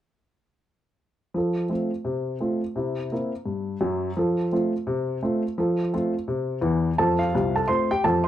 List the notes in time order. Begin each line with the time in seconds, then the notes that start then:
1.34 F3 A4
1.69 A3 C4 F4
2.05 C3
2.40 A3 C4 F4
2.76 C3 E4
3.12 A#3 C4 E4
3.46 G2
3.81 F#2 F#3
4.17 F3 A4
4.53 A3 C4 F4
4.87 C3
5.23 A3 C4 F4
5.58 F3 A4
5.94 A3 C4 F4
6.28 C3
6.61 E2 E3
6.98 F2 F3 A4 A5
7.19 F4 F5
7.34 C2 C3
7.56 A4 A5
7.68 A3 C4 F4 C5 C6
7.91 G4 G5
8.04 F2 F3 A4 A5
8.24 C6